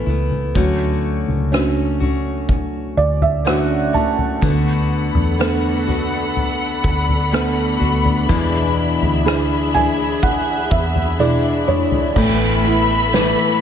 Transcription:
0.00 0.52 A3 soft
0.00 0.52 E4 soft
0.00 0.52 A4 soft
0.00 0.53 B4 soft
0.06 0.52 C#2 medium
0.06 0.55 A3 soft
0.06 0.56 B3 soft
0.06 0.55 E4 soft
0.31 floor tom medium
0.54 1.24 D2 medium
0.54 1.56 D3 medium
0.54 4.38 F#3 soft
0.54 1.51 A3 medium
0.54 1.51 C#4 medium
0.54 1.53 F#4 medium
0.54 kick medium
0.54 floor tom medium
1.28 2.93 C#2 medium
1.28 floor tom medium
1.52 2.00 A3 medium
1.52 2.46 C#4 soft
1.52 2.00 C#4 medium
1.52 2.46 D4 soft
1.52 2.46 F#4 soft
1.52 1.99 F#4 medium
1.52 cross-stick medium
2.00 3.45 A3 soft
2.00 3.46 C#4 soft
2.00 3.47 F#4 medium
2.00 floor tom medium
2.49 kick medium
2.49 floor tom medium
2.97 3.90 D2 medium
2.97 3.20 D5 medium
3.21 3.44 E5 medium
3.21 floor tom medium
3.45 3.94 D3 medium
3.45 3.94 A3 medium
3.45 4.40 C#4 soft
3.45 3.94 C#4 medium
3.45 4.40 D4 soft
3.45 4.40 F#4 soft
3.45 3.92 F#4 medium
3.45 3.91 F#5 medium
3.45 cross-stick medium
3.93 4.41 A3 soft
3.93 4.43 C#4 soft
3.93 4.42 F#4 medium
3.93 4.39 A5 medium
3.93 floor tom medium
4.18 floor tom medium
4.41 5.11 D2 medium
4.41 5.38 D3 medium
4.41 8.25 D3 medium
4.41 5.39 A3 medium
4.41 5.40 B3 medium
4.41 12.13 D4 medium
4.41 5.40 F#4 medium
4.41 8.26 A4 medium
4.41 8.26 F#5 medium
4.41 12.13 B5 medium
4.41 kick medium
4.41 floor tom medium
5.15 6.80 E2 medium
5.15 floor tom medium
5.38 5.87 D3 medium
5.38 5.88 A3 medium
5.38 6.33 B3 soft
5.38 5.88 B3 medium
5.38 6.33 D4 soft
5.38 5.86 F#4 medium
5.38 6.33 A4 medium
5.38 cross-stick loud
5.87 7.31 A3 soft
5.87 7.33 B3 medium
5.87 7.32 F#4 medium
5.87 floor tom medium
6.36 floor tom medium
6.84 7.77 D2 medium
6.84 kick medium
7.08 floor tom medium
7.31 7.80 D3 medium
7.31 7.81 A3 medium
7.31 8.27 B3 soft
7.31 7.80 B3 medium
7.31 8.27 D4 soft
7.31 7.78 F#4 medium
7.31 8.27 A4 soft
7.31 cross-stick loud
7.79 8.26 D2 medium
7.79 8.30 A3 soft
7.79 8.30 B3 soft
7.79 8.29 F#4 medium
7.79 floor tom medium
8.05 floor tom medium
8.29 9.26 E2 medium
8.29 8.98 E2 medium
8.29 9.26 B2 medium
8.29 12.12 E3 medium
8.29 9.25 E3 medium
8.29 9.25 G#3 medium
8.29 9.26 D4 medium
8.29 9.29 E4 medium
8.29 12.13 G#4 medium
8.29 12.13 E5 medium
8.29 kick medium
8.29 floor tom medium
9.02 10.67 D2 medium
9.02 floor tom medium
9.25 9.74 E3 medium
9.25 9.75 G#3 medium
9.25 10.20 D4 soft
9.25 9.74 D4 medium
9.25 10.20 E4 soft
9.25 9.72 E4 medium
9.25 10.20 G#4 medium
9.25 cross-stick loud
9.74 11.18 E3 soft
9.74 11.19 G#3 soft
9.74 11.20 D4 medium
9.74 11.21 E4 medium
9.74 10.20 G#5 medium
9.74 floor tom medium
10.23 10.68 F#5 medium
10.23 kick medium
10.23 floor tom medium
10.71 11.64 E2 medium
10.71 11.16 E5 medium
10.71 kick medium
10.95 floor tom medium
11.19 11.68 E3 medium
11.19 11.68 G#3 medium
11.19 12.13 D4 soft
11.19 11.68 D4 medium
11.19 12.13 E4 soft
11.19 11.66 E4 medium
11.19 12.14 G#4 medium
11.19 11.65 D5 medium
11.19 high tom soft
11.67 12.15 E3 soft
11.67 12.17 G#3 soft
11.67 12.17 D4 medium
11.67 12.16 E4 medium
11.67 12.13 C#5 medium
11.67 mid tom medium
11.92 floor tom medium
12.16 13.33 A1 medium
12.16 12.65 A2 medium
12.16 12.65 E3 medium
12.16 13.61 A3 medium
12.16 12.65 A3 medium
12.16 12.65 B3 medium
12.16 12.63 E4 medium
12.16 13.61 A4 medium
12.16 13.61 B4 medium
12.16 13.61 E5 medium
12.16 13.61 B5 loud
12.16 13.61 B5 medium
12.16 kick loud
12.16 floor tom loud
12.16 crash medium
12.16 shaker medium
12.41 shaker soft
12.64 13.13 A3 soft
12.64 13.13 B3 soft
12.64 13.13 E4 medium
12.64 13.61 E4 medium
12.64 shaker soft
12.90 shaker soft
13.12 13.61 A2 medium
13.12 13.61 E3 medium
13.12 13.61 A3 medium
13.12 13.61 B3 medium
13.12 13.61 E4 medium
13.12 13.61 B4 soft
13.12 snare loud
13.12 shaker medium
13.38 shaker soft

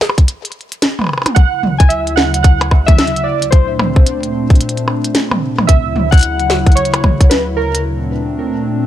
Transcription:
0.01 snare loud
0.10 percussion blips medium
0.18 kick loud
0.18 closed hi-hat medium
0.28 closed hi-hat medium
0.45 closed hi-hat soft
0.52 closed hi-hat soft
0.61 closed hi-hat soft
0.72 closed hi-hat medium
0.82 snare loud
0.82 closed hi-hat medium
0.99 mid tom medium
0.99 percussion blips soft
1.01 percussion blips soft
1.04 percussion blips soft
1.07 percussion blips soft
1.09 percussion blips soft
1.13 percussion blips soft
1.18 percussion blips soft
1.22 percussion blips soft
1.26 closed hi-hat medium
1.26 mid tom medium
1.26 percussion blips soft
1.35 3.50 D2 medium
1.35 3.50 C#3 medium
1.35 3.50 F#3 medium
1.35 3.50 E4 medium
1.35 1.76 F#5 loud
1.35 kick loud
1.35 closed hi-hat medium
1.63 mid tom medium
1.78 1.89 G#5 loud
1.78 kick loud
1.78 closed hi-hat soft
1.89 2.15 E5 loud
1.89 closed hi-hat medium
2.07 closed hi-hat soft
2.16 2.42 F#5 loud
2.16 snare loud
2.34 closed hi-hat soft
2.43 2.89 F#5 loud
2.43 kick loud
2.43 closed hi-hat medium
2.61 closed hi-hat soft
2.61 percussion blips soft
2.71 kick medium
2.71 percussion blips soft
2.86 3.26 E5 loud
2.86 kick loud
2.86 closed hi-hat soft
2.86 mid tom medium
2.98 snare loud
2.98 closed hi-hat soft
3.07 closed hi-hat soft
3.16 closed hi-hat soft
3.24 3.50 D5 medium
3.42 closed hi-hat medium
3.51 5.67 A#2 medium
3.51 5.67 A3 medium
3.51 5.67 C4 medium
3.51 5.67 D4 medium
3.51 5.10 C5 medium
3.51 kick loud
3.51 closed hi-hat medium
3.79 mid tom medium
3.79 percussion blips soft
3.96 kick loud
4.07 closed hi-hat medium
4.23 closed hi-hat soft
4.50 kick loud
4.50 closed hi-hat soft
4.55 closed hi-hat soft
4.61 closed hi-hat medium
4.69 closed hi-hat soft
4.77 closed hi-hat soft
4.88 percussion blips soft
5.04 closed hi-hat soft
5.15 snare loud
5.15 closed hi-hat medium
5.31 mid tom medium
5.31 percussion blips soft
5.58 mid tom loud
5.58 percussion blips soft
5.67 7.83 D2 medium
5.67 7.83 C#3 medium
5.67 7.83 F#3 medium
5.67 7.83 E4 medium
5.67 6.09 E5 loud
5.67 kick loud
5.67 closed hi-hat medium
5.96 mid tom medium
6.11 6.78 F#5 loud
6.11 kick loud
6.11 closed hi-hat soft
6.14 closed hi-hat soft
6.18 closed hi-hat soft
6.19 closed hi-hat soft
6.21 closed hi-hat soft
6.23 closed hi-hat medium
6.40 closed hi-hat soft
6.50 snare loud
6.66 kick loud
6.66 closed hi-hat soft
6.72 7.26 C#5 loud
6.72 closed hi-hat soft
6.77 closed hi-hat medium
6.85 closed hi-hat soft
6.94 closed hi-hat soft
6.94 percussion blips medium
7.04 kick medium
7.04 mid tom loud
7.04 percussion blips soft
7.21 kick loud
7.21 closed hi-hat soft
7.30 7.42 B4 medium
7.30 snare loud
7.30 closed hi-hat medium
7.57 7.82 A#4 medium
7.75 closed hi-hat medium
7.85 8.87 A#2 medium
7.85 8.87 A3 medium
7.85 8.87 C4 medium
7.85 8.87 D4 medium

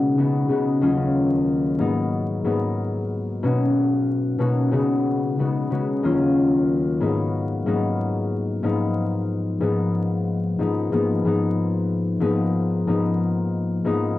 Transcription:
0.00 0.16 C#3 loud
0.00 0.17 G#3 medium
0.00 0.12 B3 medium
0.00 0.12 D#4 medium
0.00 0.13 F#4 loud
0.17 0.47 C#3 medium
0.17 0.48 G#3 medium
0.17 0.48 B3 medium
0.17 0.48 D#4 medium
0.17 0.49 F#4 medium
0.48 0.87 C#3 medium
0.48 0.87 G#3 medium
0.48 0.80 B3 medium
0.48 0.80 D#4 medium
0.48 0.80 F#4 medium
0.81 1.84 D#2 medium
0.81 1.78 F#3 medium
0.81 1.79 A#3 medium
0.81 3.44 C#4 medium
0.81 1.85 F4 loud
1.78 2.43 G#2 medium
1.78 2.44 F#3 medium
1.78 2.41 A#3 medium
1.78 2.41 B3 medium
1.78 2.41 D#4 loud
2.44 3.47 G#2 medium
2.44 3.47 F#3 medium
2.44 3.43 A#3 medium
2.44 3.49 B3 medium
2.44 3.44 D#4 loud
3.43 4.37 B2 medium
3.43 4.39 A#3 medium
3.43 4.39 C#4 medium
3.43 4.40 D#4 medium
3.43 4.40 F#4 loud
4.39 4.78 B2 medium
4.39 4.72 A#3 medium
4.39 4.73 C#4 medium
4.39 4.72 D#4 medium
4.39 4.72 F#4 loud
4.71 5.38 C#3 loud
4.71 5.38 G#3 medium
4.71 5.34 B3 medium
4.71 5.34 D#4 medium
4.71 5.34 F#4 loud
5.39 5.69 C#3 medium
5.39 5.70 G#3 medium
5.39 5.70 B3 medium
5.39 5.70 D#4 medium
5.39 5.70 F#4 medium
5.70 6.08 C#3 medium
5.70 6.08 G#3 medium
5.70 6.02 B3 medium
5.70 6.02 D#4 medium
5.70 6.02 F#4 medium
6.03 7.06 D#2 medium
6.03 7.00 F#3 medium
6.03 7.01 A#3 medium
6.03 8.94 C#4 medium
6.03 7.07 F4 loud
7.00 7.65 G#2 medium
7.00 7.65 F#3 medium
7.00 7.62 A#3 medium
7.00 7.63 B3 medium
7.00 7.63 D#4 medium
7.66 8.62 G#2 medium
7.66 8.69 F#3 medium
7.66 8.63 A#3 medium
7.66 8.64 B3 medium
7.66 8.64 D#4 loud
8.63 9.59 G#2 medium
8.63 9.60 F3 medium
8.63 9.61 A#3 medium
8.63 9.62 B3 medium
8.63 9.62 D#4 loud
9.61 10.57 G#2 loud
9.61 10.58 F3 medium
9.61 10.59 A#3 medium
9.61 10.60 B3 medium
9.61 10.60 D#4 loud
10.59 10.91 G#2 medium
10.59 10.91 F3 medium
10.59 10.90 A#3 medium
10.59 10.91 B3 medium
10.59 10.91 D#4 medium
10.92 11.24 G#2 medium
10.92 11.24 F3 medium
10.92 11.23 A#3 medium
10.92 11.23 B3 medium
10.92 11.24 D#4 medium
11.25 12.19 G#2 medium
11.25 12.19 F3 medium
11.25 12.21 A#3 medium
11.25 12.21 B3 medium
11.25 12.22 D#4 loud
12.20 12.86 G#2 loud
12.20 12.86 F3 medium
12.20 12.83 A#3 medium
12.20 12.84 B3 medium
12.20 12.84 D#4 loud
12.87 13.83 G#2 loud
12.87 13.84 F3 medium
12.87 13.85 A#3 medium
12.87 13.86 B3 medium
12.87 13.86 D#4 loud
13.85 14.19 G#2 medium
13.85 14.19 F3 medium
13.85 14.19 A#3 medium
13.85 14.19 B3 medium
13.85 14.19 D#4 loud

